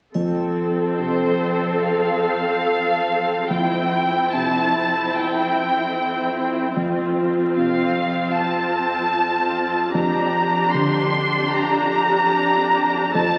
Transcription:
0, 0, Header, 1, 6, 480
1, 0, Start_track
1, 0, Key_signature, -1, "major"
1, 0, Tempo, 858369
1, 79, Time_signature, 4, 2, 24, 8
1, 1042, Tempo, 821918
1, 2962, Tempo, 800000
1, 7901, End_track
2, 0, Start_track
2, 0, Title_t, "Violin section"
2, 0, Program_c, 0, 48
2, 540, Note_on_c, 0, 72, 44
2, 1014, Note_off_c, 0, 72, 0
2, 1035, Note_on_c, 0, 77, 46
2, 1993, Note_off_c, 0, 77, 0
2, 1994, Note_on_c, 0, 79, 50
2, 2471, Note_off_c, 0, 79, 0
2, 2471, Note_on_c, 0, 81, 53
2, 2956, Note_off_c, 0, 81, 0
2, 2958, Note_on_c, 0, 79, 49
2, 3929, Note_off_c, 0, 79, 0
2, 4407, Note_on_c, 0, 77, 50
2, 4856, Note_off_c, 0, 77, 0
2, 4874, Note_on_c, 0, 81, 54
2, 5831, Note_off_c, 0, 81, 0
2, 5832, Note_on_c, 0, 82, 54
2, 6301, Note_off_c, 0, 82, 0
2, 6303, Note_on_c, 0, 84, 57
2, 6781, Note_off_c, 0, 84, 0
2, 6788, Note_on_c, 0, 82, 62
2, 7751, Note_on_c, 0, 81, 69
2, 7759, Note_off_c, 0, 82, 0
2, 7901, Note_off_c, 0, 81, 0
2, 7901, End_track
3, 0, Start_track
3, 0, Title_t, "Viola section"
3, 0, Program_c, 1, 48
3, 78, Note_on_c, 1, 69, 38
3, 81, Note_on_c, 1, 60, 36
3, 1972, Note_off_c, 1, 69, 0
3, 1973, Note_off_c, 1, 60, 0
3, 1992, Note_on_c, 1, 60, 38
3, 1992, Note_on_c, 1, 64, 39
3, 3904, Note_off_c, 1, 60, 0
3, 3925, Note_on_c, 1, 60, 38
3, 3925, Note_on_c, 1, 65, 39
3, 3928, Note_off_c, 1, 64, 0
3, 5808, Note_off_c, 1, 60, 0
3, 5808, Note_off_c, 1, 65, 0
3, 5830, Note_on_c, 1, 62, 43
3, 5833, Note_on_c, 1, 67, 43
3, 7732, Note_off_c, 1, 62, 0
3, 7733, Note_off_c, 1, 67, 0
3, 7757, Note_on_c, 1, 60, 52
3, 7760, Note_on_c, 1, 69, 52
3, 7901, Note_off_c, 1, 60, 0
3, 7901, Note_off_c, 1, 69, 0
3, 7901, End_track
4, 0, Start_track
4, 0, Title_t, "Cello section"
4, 0, Program_c, 2, 48
4, 81, Note_on_c, 2, 41, 37
4, 1974, Note_off_c, 2, 41, 0
4, 1994, Note_on_c, 2, 41, 37
4, 3906, Note_off_c, 2, 41, 0
4, 3932, Note_on_c, 2, 41, 38
4, 5811, Note_off_c, 2, 41, 0
4, 5841, Note_on_c, 2, 41, 39
4, 7737, Note_off_c, 2, 41, 0
4, 7761, Note_on_c, 2, 41, 47
4, 7901, Note_off_c, 2, 41, 0
4, 7901, End_track
5, 0, Start_track
5, 0, Title_t, "Grand piano"
5, 0, Program_c, 3, 0
5, 83, Note_on_c, 3, 41, 32
5, 176, Control_c, 3, 64, 127
5, 550, Note_on_c, 3, 48, 23
5, 1975, Note_off_c, 3, 41, 0
5, 1997, Note_off_c, 3, 48, 0
5, 1999, Note_on_c, 3, 41, 35
5, 2007, Control_c, 3, 64, 0
5, 2109, Control_c, 3, 64, 127
5, 2482, Note_on_c, 3, 48, 25
5, 3908, Note_off_c, 3, 41, 0
5, 3930, Note_on_c, 3, 41, 33
5, 3931, Note_off_c, 3, 48, 0
5, 3941, Control_c, 3, 64, 0
5, 4033, Control_c, 3, 64, 127
5, 4412, Note_on_c, 3, 48, 27
5, 5810, Note_off_c, 3, 41, 0
5, 5836, Note_off_c, 3, 48, 0
5, 5837, Note_on_c, 3, 41, 41
5, 5844, Control_c, 3, 64, 0
5, 5936, Control_c, 3, 64, 127
5, 6315, Note_on_c, 3, 50, 28
5, 7735, Note_off_c, 3, 41, 0
5, 7759, Note_off_c, 3, 50, 0
5, 7760, Note_on_c, 3, 41, 42
5, 7769, Control_c, 3, 64, 0
5, 7873, Control_c, 3, 64, 127
5, 7901, Note_off_c, 3, 41, 0
5, 7901, End_track
6, 0, Start_track
6, 0, Title_t, "Drums"
6, 80, Note_on_c, 9, 81, 25
6, 136, Note_off_c, 9, 81, 0
6, 7901, End_track
0, 0, End_of_file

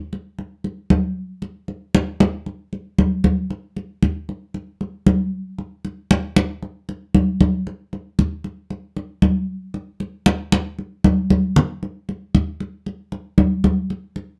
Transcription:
0, 0, Header, 1, 2, 480
1, 0, Start_track
1, 0, Tempo, 519931
1, 1316, Time_signature, 4, 2, 24, 8
1, 13289, End_track
2, 0, Start_track
2, 0, Title_t, "Drums"
2, 117, Note_on_c, 9, 63, 31
2, 209, Note_off_c, 9, 63, 0
2, 356, Note_on_c, 9, 63, 31
2, 448, Note_off_c, 9, 63, 0
2, 594, Note_on_c, 9, 63, 30
2, 686, Note_off_c, 9, 63, 0
2, 833, Note_on_c, 9, 63, 76
2, 926, Note_off_c, 9, 63, 0
2, 1311, Note_on_c, 9, 63, 34
2, 1403, Note_off_c, 9, 63, 0
2, 1552, Note_on_c, 9, 63, 31
2, 1645, Note_off_c, 9, 63, 0
2, 1796, Note_on_c, 9, 63, 82
2, 1888, Note_off_c, 9, 63, 0
2, 2035, Note_on_c, 9, 63, 83
2, 2127, Note_off_c, 9, 63, 0
2, 2274, Note_on_c, 9, 63, 31
2, 2367, Note_off_c, 9, 63, 0
2, 2517, Note_on_c, 9, 63, 34
2, 2610, Note_off_c, 9, 63, 0
2, 2756, Note_on_c, 9, 63, 76
2, 2848, Note_off_c, 9, 63, 0
2, 2992, Note_on_c, 9, 63, 74
2, 3085, Note_off_c, 9, 63, 0
2, 3235, Note_on_c, 9, 63, 32
2, 3327, Note_off_c, 9, 63, 0
2, 3476, Note_on_c, 9, 63, 33
2, 3568, Note_off_c, 9, 63, 0
2, 3716, Note_on_c, 9, 63, 54
2, 3809, Note_off_c, 9, 63, 0
2, 3959, Note_on_c, 9, 63, 27
2, 4051, Note_off_c, 9, 63, 0
2, 4195, Note_on_c, 9, 63, 32
2, 4287, Note_off_c, 9, 63, 0
2, 4438, Note_on_c, 9, 63, 35
2, 4531, Note_off_c, 9, 63, 0
2, 4676, Note_on_c, 9, 63, 69
2, 4768, Note_off_c, 9, 63, 0
2, 5156, Note_on_c, 9, 63, 34
2, 5248, Note_off_c, 9, 63, 0
2, 5397, Note_on_c, 9, 63, 33
2, 5489, Note_off_c, 9, 63, 0
2, 5638, Note_on_c, 9, 63, 83
2, 5730, Note_off_c, 9, 63, 0
2, 5876, Note_on_c, 9, 63, 82
2, 5968, Note_off_c, 9, 63, 0
2, 6117, Note_on_c, 9, 63, 32
2, 6209, Note_off_c, 9, 63, 0
2, 6359, Note_on_c, 9, 63, 32
2, 6451, Note_off_c, 9, 63, 0
2, 6597, Note_on_c, 9, 63, 72
2, 6689, Note_off_c, 9, 63, 0
2, 6837, Note_on_c, 9, 63, 73
2, 6929, Note_off_c, 9, 63, 0
2, 7079, Note_on_c, 9, 63, 34
2, 7171, Note_off_c, 9, 63, 0
2, 7320, Note_on_c, 9, 63, 34
2, 7412, Note_off_c, 9, 63, 0
2, 7559, Note_on_c, 9, 63, 53
2, 7651, Note_off_c, 9, 63, 0
2, 7795, Note_on_c, 9, 63, 32
2, 7887, Note_off_c, 9, 63, 0
2, 8036, Note_on_c, 9, 63, 31
2, 8128, Note_off_c, 9, 63, 0
2, 8277, Note_on_c, 9, 63, 31
2, 8369, Note_off_c, 9, 63, 0
2, 8513, Note_on_c, 9, 63, 76
2, 8606, Note_off_c, 9, 63, 0
2, 8994, Note_on_c, 9, 63, 33
2, 9086, Note_off_c, 9, 63, 0
2, 9233, Note_on_c, 9, 63, 35
2, 9325, Note_off_c, 9, 63, 0
2, 9472, Note_on_c, 9, 63, 77
2, 9565, Note_off_c, 9, 63, 0
2, 9715, Note_on_c, 9, 63, 76
2, 9808, Note_off_c, 9, 63, 0
2, 9957, Note_on_c, 9, 63, 28
2, 10050, Note_off_c, 9, 63, 0
2, 10196, Note_on_c, 9, 63, 90
2, 10288, Note_off_c, 9, 63, 0
2, 10436, Note_on_c, 9, 63, 69
2, 10528, Note_off_c, 9, 63, 0
2, 10675, Note_on_c, 9, 64, 69
2, 10767, Note_off_c, 9, 64, 0
2, 10919, Note_on_c, 9, 63, 31
2, 11011, Note_off_c, 9, 63, 0
2, 11159, Note_on_c, 9, 63, 35
2, 11251, Note_off_c, 9, 63, 0
2, 11398, Note_on_c, 9, 63, 55
2, 11490, Note_off_c, 9, 63, 0
2, 11636, Note_on_c, 9, 63, 28
2, 11729, Note_off_c, 9, 63, 0
2, 11876, Note_on_c, 9, 63, 31
2, 11968, Note_off_c, 9, 63, 0
2, 12113, Note_on_c, 9, 63, 31
2, 12206, Note_off_c, 9, 63, 0
2, 12350, Note_on_c, 9, 63, 74
2, 12443, Note_off_c, 9, 63, 0
2, 12593, Note_on_c, 9, 63, 64
2, 12685, Note_off_c, 9, 63, 0
2, 12835, Note_on_c, 9, 63, 35
2, 12927, Note_off_c, 9, 63, 0
2, 13072, Note_on_c, 9, 63, 34
2, 13164, Note_off_c, 9, 63, 0
2, 13289, End_track
0, 0, End_of_file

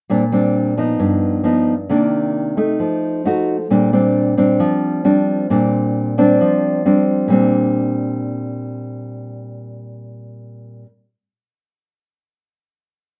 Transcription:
0, 0, Header, 1, 2, 480
1, 0, Start_track
1, 0, Key_signature, -2, "major"
1, 0, Tempo, 449775
1, 99, Time_signature, 4, 2, 24, 8
1, 14084, End_track
2, 0, Start_track
2, 0, Title_t, "Nylon-string guitar"
2, 0, Program_c, 0, 24
2, 102, Note_on_c, 0, 55, 40
2, 107, Note_on_c, 0, 46, 52
2, 107, Note_on_c, 0, 60, 43
2, 114, Note_on_c, 0, 62, 51
2, 243, Note_off_c, 0, 55, 0
2, 244, Note_off_c, 0, 60, 0
2, 247, Note_off_c, 0, 62, 0
2, 342, Note_on_c, 0, 55, 48
2, 348, Note_on_c, 0, 60, 49
2, 355, Note_on_c, 0, 62, 60
2, 785, Note_off_c, 0, 55, 0
2, 787, Note_off_c, 0, 60, 0
2, 791, Note_off_c, 0, 62, 0
2, 826, Note_on_c, 0, 53, 49
2, 831, Note_on_c, 0, 59, 53
2, 838, Note_on_c, 0, 63, 56
2, 1043, Note_off_c, 0, 46, 0
2, 1061, Note_on_c, 0, 43, 58
2, 1508, Note_off_c, 0, 53, 0
2, 1511, Note_off_c, 0, 59, 0
2, 1513, Note_off_c, 0, 63, 0
2, 1532, Note_on_c, 0, 53, 50
2, 1544, Note_on_c, 0, 59, 46
2, 1548, Note_on_c, 0, 63, 51
2, 1848, Note_off_c, 0, 53, 0
2, 1855, Note_off_c, 0, 59, 0
2, 1855, Note_off_c, 0, 63, 0
2, 2000, Note_off_c, 0, 43, 0
2, 2022, Note_on_c, 0, 48, 53
2, 2025, Note_on_c, 0, 51, 45
2, 2028, Note_on_c, 0, 58, 45
2, 2033, Note_on_c, 0, 62, 48
2, 2708, Note_off_c, 0, 51, 0
2, 2709, Note_off_c, 0, 58, 0
2, 2712, Note_off_c, 0, 62, 0
2, 2744, Note_on_c, 0, 57, 49
2, 2750, Note_on_c, 0, 63, 54
2, 2962, Note_off_c, 0, 48, 0
2, 2983, Note_on_c, 0, 53, 58
2, 3429, Note_off_c, 0, 57, 0
2, 3431, Note_off_c, 0, 63, 0
2, 3470, Note_on_c, 0, 57, 46
2, 3475, Note_on_c, 0, 63, 48
2, 3486, Note_on_c, 0, 66, 54
2, 3793, Note_off_c, 0, 57, 0
2, 3795, Note_off_c, 0, 63, 0
2, 3800, Note_off_c, 0, 66, 0
2, 3923, Note_off_c, 0, 53, 0
2, 3952, Note_on_c, 0, 46, 53
2, 3956, Note_on_c, 0, 55, 49
2, 3958, Note_on_c, 0, 60, 46
2, 3963, Note_on_c, 0, 62, 51
2, 4154, Note_off_c, 0, 55, 0
2, 4156, Note_off_c, 0, 60, 0
2, 4158, Note_off_c, 0, 62, 0
2, 4193, Note_on_c, 0, 55, 50
2, 4196, Note_on_c, 0, 60, 55
2, 4202, Note_on_c, 0, 62, 60
2, 4633, Note_off_c, 0, 55, 0
2, 4635, Note_off_c, 0, 60, 0
2, 4636, Note_off_c, 0, 62, 0
2, 4668, Note_on_c, 0, 55, 54
2, 4670, Note_on_c, 0, 60, 53
2, 4678, Note_on_c, 0, 62, 59
2, 4887, Note_off_c, 0, 46, 0
2, 4906, Note_on_c, 0, 53, 60
2, 5350, Note_off_c, 0, 55, 0
2, 5351, Note_off_c, 0, 60, 0
2, 5355, Note_off_c, 0, 62, 0
2, 5384, Note_on_c, 0, 55, 48
2, 5389, Note_on_c, 0, 60, 49
2, 5390, Note_on_c, 0, 62, 54
2, 5828, Note_off_c, 0, 55, 0
2, 5829, Note_off_c, 0, 60, 0
2, 5831, Note_off_c, 0, 62, 0
2, 5843, Note_off_c, 0, 53, 0
2, 5871, Note_on_c, 0, 55, 46
2, 5872, Note_on_c, 0, 46, 58
2, 5877, Note_on_c, 0, 60, 49
2, 5881, Note_on_c, 0, 62, 49
2, 6550, Note_off_c, 0, 55, 0
2, 6553, Note_off_c, 0, 60, 0
2, 6555, Note_off_c, 0, 62, 0
2, 6594, Note_on_c, 0, 55, 57
2, 6599, Note_on_c, 0, 60, 54
2, 6603, Note_on_c, 0, 62, 64
2, 6805, Note_off_c, 0, 46, 0
2, 6839, Note_on_c, 0, 53, 57
2, 7271, Note_off_c, 0, 55, 0
2, 7274, Note_off_c, 0, 60, 0
2, 7275, Note_off_c, 0, 62, 0
2, 7315, Note_on_c, 0, 55, 50
2, 7321, Note_on_c, 0, 60, 48
2, 7326, Note_on_c, 0, 62, 48
2, 7765, Note_on_c, 0, 46, 47
2, 7767, Note_off_c, 0, 53, 0
2, 7770, Note_off_c, 0, 55, 0
2, 7773, Note_off_c, 0, 60, 0
2, 7776, Note_off_c, 0, 62, 0
2, 7790, Note_on_c, 0, 55, 50
2, 7808, Note_on_c, 0, 60, 57
2, 7826, Note_on_c, 0, 62, 50
2, 11557, Note_off_c, 0, 46, 0
2, 11582, Note_off_c, 0, 55, 0
2, 11600, Note_off_c, 0, 60, 0
2, 11618, Note_off_c, 0, 62, 0
2, 14084, End_track
0, 0, End_of_file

